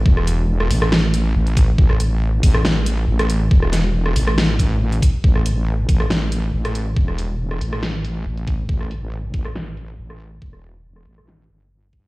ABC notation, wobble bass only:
X:1
M:4/4
L:1/8
Q:1/4=139
K:Cmix
V:1 name="Wobble bass" clef=bass
E,,,3 A,,,3 A,,,2 | A,,,3 A,,,3 A,,,2 | E,,,3 A,,,4 z | A,,,3 A,,,3 A,,,2 |
E,,,3 A,,,3 A,,,2 | A,,,3 A,,,3 A,,,2 | E,,,3 A,,,2 G,,,3 |]